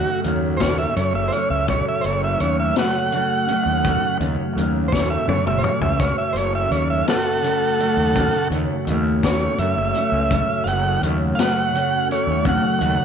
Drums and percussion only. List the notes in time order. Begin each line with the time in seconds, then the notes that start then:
0.24 closed hi-hat
0.60 kick, snare, closed hi-hat
0.97 closed hi-hat
1.32 closed hi-hat
1.68 kick, closed hi-hat
2.04 closed hi-hat
2.40 closed hi-hat
2.76 snare, closed hi-hat
3.12 closed hi-hat
3.48 closed hi-hat
3.85 kick, closed hi-hat
4.21 closed hi-hat
4.58 closed hi-hat
4.92 kick, snare
5.29 high tom
5.47 mid tom
5.64 mid tom
5.81 floor tom
6.00 kick, closed hi-hat
6.36 closed hi-hat
6.71 closed hi-hat
7.08 snare, closed hi-hat
7.44 closed hi-hat
7.80 closed hi-hat
8.16 kick, closed hi-hat
8.52 closed hi-hat
8.87 closed hi-hat
9.23 kick, snare, closed hi-hat
9.58 closed hi-hat
9.94 closed hi-hat
10.31 kick, closed hi-hat
10.67 closed hi-hat
11.03 closed hi-hat
11.39 snare, closed hi-hat
11.75 closed hi-hat
12.11 closed hi-hat
12.45 kick, closed hi-hat
12.81 closed hi-hat